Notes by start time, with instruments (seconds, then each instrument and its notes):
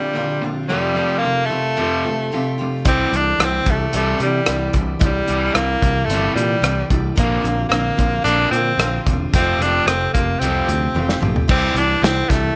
Already playing: overdriven electric guitar A#2 D3, tenor saxophone G3, steel-string acoustic guitar C4 D4 F4
0.14 overdriven electric guitar A#2 D3, steel-string acoustic guitar A#3 C4 D4 F4
0.41 overdriven electric guitar A#2 D3, steel-string acoustic guitar C4 D4 F4
0.69 overdriven electric guitar F2 C3 F3, steel-string acoustic guitar F2 F3 A3 C4 F4 G4, tenor saxophone G3
0.95 overdriven electric guitar F2 C3 F3, steel-string acoustic guitar A3 C4 F4 G4
1.18 tenor saxophone A#3
1.23 overdriven electric guitar F2 C3, steel-string acoustic guitar A3 C4 F4 G4
1.46 tenor saxophone A3, steel-string acoustic guitar F4
1.50 overdriven electric guitar F2 C3, steel-string acoustic guitar A3 C4 G4
1.76 steel-string acoustic guitar F2 F3 A3 C4 F4 G4, overdriven electric guitar F2 C3 F3
2.05 overdriven electric guitar F2 C3, steel-string acoustic guitar A3 C4 F4 G4
2.32 overdriven electric guitar F2 C3, steel-string acoustic guitar A3 C4 F4 G4
2.58 overdriven electric guitar F2 C3, steel-string acoustic guitar A3 C4 F4 G4
2.85 picked electric bass C2, overdriven electric guitar C3 E3 G3, steel-string acoustic guitar C4 E4 G4 D5, tenor saxophone C4, kick, closed hi-hat
3.12 picked electric bass C2, overdriven electric guitar C3 E3, tenor saxophone D4, steel-string acoustic guitar E4 G4 D5, closed hi-hat
3.39 picked electric bass C2, overdriven electric guitar C3 E3, steel-string acoustic guitar C4 E4 G4 D5, cross-stick, closed hi-hat
3.44 tenor saxophone C4
3.66 picked electric bass C2, overdriven electric guitar C3 E3, steel-string acoustic guitar E4 G4 D5, kick, closed hi-hat
3.71 tenor saxophone A3
3.92 picked electric bass C2, overdriven electric guitar C3 E3 G3, tenor saxophone A3, steel-string acoustic guitar C4 E4 G4 D5, closed hi-hat
4.19 picked electric bass C3, overdriven electric guitar C3 E3, steel-string acoustic guitar E4 G4 D5, closed hi-hat
4.23 tenor saxophone G3
4.46 picked electric bass C2, overdriven electric guitar C3 E3, steel-string acoustic guitar C4 E4 G4 D5, cross-stick, closed hi-hat
4.73 picked electric bass C2, overdriven electric guitar C3 E3, steel-string acoustic guitar E4 G4 D5, kick, closed hi-hat
4.99 picked electric bass C2, overdriven electric guitar C3 E3, steel-string acoustic guitar C4 E4 G4 D5, kick, closed hi-hat
5.05 tenor saxophone G3
5.26 picked electric bass C2, overdriven electric guitar C3 E3 G3, steel-string acoustic guitar E4 G4 D5, closed hi-hat
5.54 picked electric bass C2, overdriven electric guitar C3 E3, tenor saxophone A#3, steel-string acoustic guitar C4 E4 G4 D5, cross-stick, closed hi-hat
5.82 picked electric bass C2, overdriven electric guitar C3 E3, steel-string acoustic guitar E4 G4 D5, kick, closed hi-hat
6.05 picked electric bass G1, tenor saxophone A3
6.10 overdriven electric guitar C3 E3 G3, steel-string acoustic guitar C4 E4 G4 D5, closed hi-hat
6.36 picked electric bass A#2, overdriven electric guitar C3 E3, tenor saxophone G3, steel-string acoustic guitar G4 D5, closed hi-hat
6.41 steel-string acoustic guitar E4
6.62 picked electric bass C2, overdriven electric guitar C3 E3, steel-string acoustic guitar C4 E4 G4 D5, cross-stick, closed hi-hat
6.90 picked electric bass C2, overdriven electric guitar C3 E3, steel-string acoustic guitar E4 G4 D5, kick, closed hi-hat
7.16 picked electric bass A#1, steel-string acoustic guitar A#2 A#3 C4 D4 F4, overdriven electric guitar A#2 D3 A#3, tenor saxophone A#3, kick, closed hi-hat
7.42 picked electric bass A#1, steel-string acoustic guitar C4 D4 F4, closed hi-hat
7.46 overdriven electric guitar A#2 D3
7.69 picked electric bass A#1, overdriven electric guitar A#2, steel-string acoustic guitar A#3 C4 D4 F4, tenor saxophone A#3, cross-stick, closed hi-hat
7.73 overdriven electric guitar D3
7.97 picked electric bass A#1, overdriven electric guitar A#2 D3, steel-string acoustic guitar C4 D4 F4, kick, closed hi-hat
8.24 picked electric bass A#1, steel-string acoustic guitar A#2 A#3 C4 D4 F4, overdriven electric guitar A#2 D3 A#3, tenor saxophone D4, closed hi-hat
8.51 picked electric bass A#2, overdriven electric guitar A#2 D3, tenor saxophone C4, steel-string acoustic guitar C4 D4 F4, closed hi-hat
8.78 picked electric bass A#1, overdriven electric guitar A#2 D3, steel-string acoustic guitar A#3 C4 D4 F4, cross-stick, closed hi-hat
9.06 picked electric bass E1, overdriven electric guitar A#2 D3, steel-string acoustic guitar C4 F4, kick, closed hi-hat
9.10 steel-string acoustic guitar D4
9.33 picked electric bass F1, steel-string acoustic guitar F2 F3 A3 C4 F4 G4, overdriven electric guitar F2 C3 F3, tenor saxophone C4, kick, closed hi-hat
9.59 picked electric bass F1, overdriven electric guitar F2 C3 F3, tenor saxophone D4, steel-string acoustic guitar F4 G4, closed hi-hat
9.64 steel-string acoustic guitar A3 C4
9.86 picked electric bass F1, overdriven electric guitar F2 C3, steel-string acoustic guitar A3 C4 F4 G4, tenor saxophone C4, cross-stick, closed hi-hat
10.14 picked electric bass F1, overdriven electric guitar F2 C3, steel-string acoustic guitar A3 C4 F4 G4, tenor saxophone A#3, kick, closed hi-hat
10.40 picked electric bass C2, overdriven electric guitar F2 C3 F3, steel-string acoustic guitar F2 F3 A3 C4, tenor saxophone C4, closed hi-hat
10.44 steel-string acoustic guitar F4 G4
10.67 picked electric bass D2, overdriven electric guitar F2 C3, steel-string acoustic guitar A3 C4 F4 G4, closed hi-hat
10.94 picked electric bass F1, overdriven electric guitar F2, steel-string acoustic guitar A3 C4 F4 G4, high tom
10.99 overdriven electric guitar C3
11.09 snare
11.20 picked electric bass A#1, steel-string acoustic guitar A3 C4 F4 G4, mid tom
11.25 overdriven electric guitar F2 C3
11.36 floor tom
11.48 picked electric bass C2, overdriven electric guitar C3 E3 G3, steel-string acoustic guitar C4 E4 G4 D5, tenor saxophone C4, kick, crash
11.74 picked electric bass C2, overdriven electric guitar C3 E3, tenor saxophone D4, steel-string acoustic guitar E4 G4 D5, closed hi-hat
12.01 picked electric bass C2, overdriven electric guitar C3 E3, steel-string acoustic guitar C4 E4 G4 D5, tenor saxophone C4, snare, closed hi-hat
12.30 picked electric bass C2, overdriven electric guitar C3 E3, tenor saxophone A3, steel-string acoustic guitar E4 G4 D5, kick, snare, closed hi-hat